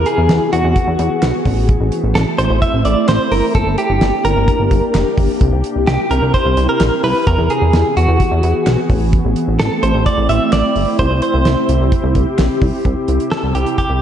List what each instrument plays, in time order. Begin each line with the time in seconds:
Already playing: ambient pad E3 B3 F#4 G#4
0.06 clean electric guitar G#4, closed hi-hat
0.18 analog synth bass E2
0.29 analog synth bass E2, snare, closed hi-hat
0.53 analog synth bass E2, clean electric guitar F#4, closed hi-hat
0.64 analog synth bass E2
0.76 kick, closed hi-hat
0.87 analog synth bass E2
0.99 analog synth bass E2, closed hi-hat
1.22 analog synth bass B1, snare, clap, closed hi-hat
1.45 analog synth bass A1, ambient pad A3 C4 E4, kick, open hi-hat
1.69 kick, closed hi-hat
1.80 analog synth bass A1
1.92 closed hi-hat
2.04 analog synth bass A1
2.15 analog synth bass A1, clean electric guitar A4, snare, closed hi-hat
2.38 analog synth bass A1, clean electric guitar C5, closed hi-hat
2.50 analog synth bass A1
2.62 clean electric guitar E5, kick, closed hi-hat
2.73 analog synth bass A1
2.85 analog synth bass A1, clean electric guitar D5, closed hi-hat
3.08 analog synth bass A1, clean electric guitar C5, snare, clap, closed hi-hat
3.32 analog synth bass G1, clean electric guitar A#4, open hi-hat
3.55 analog synth bass G1, ambient pad A#3 D4 G4, clean electric guitar A4, kick, closed hi-hat
3.66 analog synth bass G1
3.78 clean electric guitar G4, closed hi-hat
3.90 analog synth bass G1
4.01 analog synth bass G1, snare, closed hi-hat
4.25 analog synth bass G1, clean electric guitar A#4, closed hi-hat
4.36 analog synth bass G1
4.48 kick, closed hi-hat
4.60 analog synth bass G1
4.71 analog synth bass G1, kick, closed hi-hat
4.94 analog synth bass F1, snare, clap, closed hi-hat
5.18 analog synth bass G1, kick, open hi-hat
5.41 analog synth bass C2, ambient pad C3 C4 E4, kick, closed hi-hat
5.53 analog synth bass C2
5.64 closed hi-hat
5.76 analog synth bass C2
5.87 analog synth bass C2, clean electric guitar G4, snare, closed hi-hat
6.11 analog synth bass C2, clean electric guitar A#4, closed hi-hat
6.22 analog synth bass C2
6.34 clean electric guitar C5, kick, closed hi-hat
6.46 analog synth bass C2
6.57 analog synth bass C2, closed hi-hat
6.69 clean electric guitar A#4
6.80 analog synth bass A#1, snare, clap, closed hi-hat
7.04 analog synth bass C2, clean electric guitar B4, open hi-hat
7.27 analog synth bass E2, ambient pad E3 B3 F#4 G#4, clean electric guitar A#4, kick, closed hi-hat
7.38 analog synth bass E2
7.50 clean electric guitar G#4, closed hi-hat
7.62 analog synth bass E2
7.73 analog synth bass E2, snare, closed hi-hat
7.97 analog synth bass E2, clean electric guitar F#4, closed hi-hat
8.08 analog synth bass E2
8.20 kick, closed hi-hat
8.32 analog synth bass E2
8.43 analog synth bass E2, closed hi-hat
8.66 analog synth bass B1, snare, clap, closed hi-hat
8.90 analog synth bass A1, ambient pad A3 C4 E4, kick, open hi-hat
9.13 kick, closed hi-hat
9.25 analog synth bass A1
9.36 closed hi-hat
9.48 analog synth bass A1
9.59 analog synth bass A1, clean electric guitar A4, snare, closed hi-hat
9.83 analog synth bass A1, clean electric guitar C5, closed hi-hat
9.94 analog synth bass A1
10.06 clean electric guitar D5, kick, closed hi-hat
10.18 analog synth bass A1
10.29 analog synth bass A1, clean electric guitar E5, closed hi-hat
10.52 analog synth bass A1, clean electric guitar D5, snare, clap, closed hi-hat
10.76 analog synth bass G1, open hi-hat
10.99 analog synth bass C2, ambient pad C3 C4 G4, clean electric guitar C5, kick, closed hi-hat
11.11 analog synth bass C2
11.22 clean electric guitar C5, closed hi-hat
11.34 analog synth bass C2
11.45 analog synth bass C2, snare, closed hi-hat
11.69 analog synth bass C2, closed hi-hat
11.81 analog synth bass C2
11.92 kick, closed hi-hat
12.04 analog synth bass C2
12.15 analog synth bass C2, kick, closed hi-hat
12.38 analog synth bass A#1, snare, clap, closed hi-hat
12.62 analog synth bass C2, kick, open hi-hat
12.85 analog synth bass C2, ambient pad C3 C4 E4 G4, kick, closed hi-hat
13.08 analog synth bass C2, closed hi-hat
13.20 closed hi-hat
13.32 clean electric guitar A4, snare
13.43 analog synth bass C2
13.55 analog synth bass C2, clean electric guitar G4, closed hi-hat
13.66 closed hi-hat
13.78 clean electric guitar G4, kick, closed hi-hat
13.90 analog synth bass C2